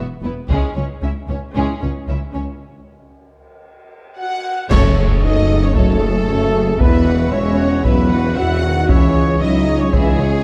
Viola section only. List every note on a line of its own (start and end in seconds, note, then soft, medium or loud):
0.24 0.32 B3 soft
0.50 0.75 C#4 medium
0.76 0.84 C#4 soft
1.02 1.10 C#4 soft
1.28 1.36 C#4 soft
1.54 1.79 C#4 medium
1.81 1.89 C#4 soft
2.09 2.17 C#4 soft
2.34 2.42 C#4 soft
4.70 4.95 A4 loud
4.70 4.95 C#5 loud
4.97 5.23 G#4 medium
4.97 5.23 A4 medium
5.24 5.50 A4 medium
5.24 5.50 C#5 medium
5.51 5.76 G#4 medium
5.51 5.76 A4 medium
5.76 6.01 A4 medium
5.76 6.00 C#5 medium
6.02 6.28 G#4 medium
6.02 6.28 A4 medium
6.29 6.53 A4 medium
6.29 6.55 C#5 medium
6.54 6.81 G#4 medium
6.54 6.81 A4 medium
6.80 7.05 E4 medium
6.80 7.05 E5 medium
7.06 7.32 F#4 medium
7.06 7.33 F#5 medium
7.33 7.59 E4 medium
7.33 7.59 E5 medium
7.58 7.85 F#4 medium
7.58 7.85 F#5 medium
7.84 8.09 E4 medium
7.84 8.09 E5 medium
8.10 8.37 F#4 medium
8.10 8.37 F#5 medium
8.35 8.63 E4 medium
8.35 8.63 E5 medium
8.61 8.89 F#4 medium
8.61 8.89 F#5 medium
8.88 9.13 E4 medium
8.88 9.13 E5 medium
9.14 9.41 G#4 medium
9.14 9.41 C#5 medium
9.41 9.68 E4 medium
9.41 9.68 E5 medium
9.68 9.94 G#4 medium
9.68 9.94 C#5 medium
9.94 10.19 E4 medium
9.94 10.19 E5 medium
10.20 10.44 G#4 medium
10.20 10.44 C#5 medium